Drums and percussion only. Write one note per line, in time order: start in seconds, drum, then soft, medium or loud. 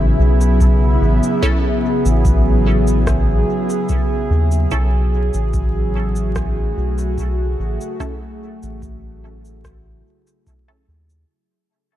0.41 cabasa soft
0.61 kick loud
0.61 cabasa soft
1.23 cabasa soft
1.43 kick loud
1.43 cabasa soft
2.06 cabasa medium
2.25 kick loud
2.25 cabasa soft
2.87 cabasa medium
3.07 kick loud
3.07 cross-stick medium
3.07 cabasa soft
3.70 cabasa soft
3.89 kick loud
3.89 cabasa soft
4.52 cabasa soft
4.71 kick loud
4.71 cabasa soft
5.34 cabasa medium
5.54 kick loud
5.54 cabasa soft
6.16 cabasa medium
6.36 kick loud
6.36 cross-stick medium
6.36 cabasa soft
6.98 cabasa medium
7.18 kick loud
7.18 cabasa soft
7.81 cabasa medium
8.00 kick loud
8.00 cabasa soft
8.63 cabasa medium
8.82 kick loud
8.82 cabasa soft
9.45 cabasa medium
9.64 kick loud
9.64 cross-stick medium
9.64 cabasa soft
10.27 cabasa medium
10.47 kick loud
10.47 cabasa soft
11.10 cabasa medium